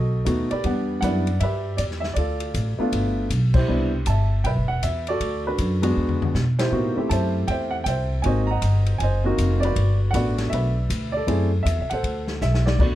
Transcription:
Already playing: upright bass B1, grand piano F#4 A4 D#5
0.25 upright bass D#2, grand piano A3 B3 D#4 F#4, kick, hi-hat pedal, ride
0.51 grand piano G4 B4 D5, muted upright bass stroke, ride
0.64 upright bass E2, grand piano G3 B3 D4 F#5, kick, ride
1.01 upright bass F#2, grand piano G3 B3 D4 E4 B4 D5 F#5, kick, hi-hat pedal, ride
1.27 ride
1.40 upright bass G2, grand piano B4 E5, kick, ride
1.44 grand piano G4
1.77 upright bass E2, grand piano D5, kick, hi-hat pedal, ride
1.91 snare
2.00 grand piano E5, snare
2.14 upright bass D2, grand piano F4 A4 D5, kick, ride
2.40 ride
2.54 upright bass A1, kick, hi-hat pedal, ride
2.79 grand piano A3 B3 D4 F4, muted upright bass stroke
2.92 upright bass G1, kick, ride
3.30 upright bass B1, kick, hi-hat pedal, ride
3.54 grand piano E4 G4 C5, kick, crash
3.68 upright bass C2, grand piano G3 B3 D4 E4
4.06 upright bass G1, grand piano E5 A5, kick, hi-hat pedal, ride
4.44 upright bass B1, grand piano B4 E5 G5, kick, ride
4.57 upright bass G1
4.68 upright bass E1, grand piano F#5
4.82 upright bass E2, grand piano E5, kick, hi-hat pedal, ride
5.07 grand piano F#4 A4 D5, ride
5.20 upright bass D2, kick, ride
5.47 grand piano D4 F#4 B4
5.58 upright bass F#2, kick, hi-hat pedal, ride
5.82 grand piano G#3 B3 D4 F#4, ride
5.97 upright bass E2
6.09 floor tom
6.22 floor tom
6.34 upright bass B2, snare, hi-hat pedal
6.59 grand piano E4 G4 C5, snare, ride
6.71 upright bass A2, grand piano A#3 B3 D#4 F#4
6.96 grand piano A3 C4 E4 G4, muted upright bass stroke
7.09 upright bass F#2, grand piano C5 E5 A5, kick, hi-hat pedal, ride
7.48 upright bass E2, grand piano C5 E5 G5, kick, ride
7.71 grand piano F#5
7.84 upright bass C2, grand piano E5 G5, kick, hi-hat pedal, ride
7.89 grand piano C5
8.22 upright bass G#1, grand piano A#3 C4 D#4 F#4 G#5, kick, ride
8.26 grand piano C5 D#5
8.47 grand piano D#5 F#5 A#5
8.62 upright bass G1, kick, hi-hat pedal, ride
8.86 ride
8.98 upright bass F#1, grand piano G#5, kick, ride
9.03 grand piano C5 D#5
9.24 grand piano A#3 C4 D#4 F#4
9.38 upright bass F1, kick, hi-hat pedal, ride
9.60 grand piano D5, ride
9.65 grand piano F#4 B4
9.76 upright bass G1, kick, ride
10.11 upright bass A1, grand piano A3 B3 D4 F#5, kick, hi-hat pedal, ride
10.15 grand piano F#4 B4 D5
10.38 snare, ride
10.50 upright bass B1, grand piano E5, kick, ride
10.54 grand piano B4
10.90 upright bass D2, kick, hi-hat pedal, ride
11.12 grand piano D5
11.17 grand piano A4
11.27 upright bass F#2, grand piano A3 C4 E4 G#4, kick, ride
11.63 upright bass E2, grand piano E5, kick, hi-hat pedal, ride
11.79 upright bass C2, grand piano E5
11.90 upright bass A1, grand piano A4 C5 F#5, ride
12.03 upright bass D2, kick, ride
12.28 snare
12.41 upright bass B1, grand piano E5, snare, hi-hat pedal
12.54 snare
12.66 grand piano D5, snare
12.79 upright bass D2, grand piano A3 B3 D4 F#4 B4 D5, kick, crash

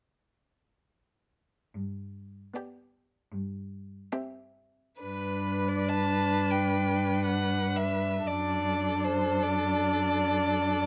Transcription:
1.75 cello G2
2.54 viola B3, violin G4 D5
3.32 cello G2
4.12 viola C4, violin G4 E5
5.01 cello G2, viola D4, violin B4
5.68 violin D5
5.89 violin A5
6.50 violin G5
7.24 violin F#5
7.76 violin E5
8.26 cello F#2, viola D4, violin A4 D5
9.04 violin C5
9.42 violin D5

